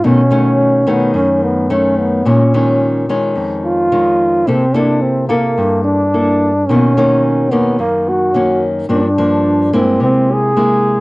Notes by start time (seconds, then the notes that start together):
0.04 B2 D#3 A3 C#4
0.30 D#3 A3 C#4
0.87 D#3 A3 B3 C#4
1.14 F#2 C#4
1.43 B3
1.70 D#3 A3 C#4
1.99 B3
2.25 A#2 D#3 G#3 C#4
2.54 D#3 G#3 C#4
3.09 D#3 G#3 C#4
3.35 F2
3.65 F4
3.92 D#3 G#3 C#4
4.47 C3 A#3 C4 E4 A4
4.74 A#3 D4 E4 A4
5.02 C4
5.29 A#3 E4 A4
5.58 G2
5.84 D4
6.14 A#3 E4 A4
6.67 B2 D#3 A#3 C#4
6.97 D#3 A#3 C#4
7.51 D#3 A#3 B3 C#4
7.79 F#2 A#3
8.09 F#4
8.34 D#3 A#3 C#4
8.89 G2 F3 A#3 D4
8.93 D4
9.18 F3 A#3 D4
9.73 G#3 A#3 C4 E4
10.00 C3 C4
10.32 G#4
10.56 G#3 A#3 E4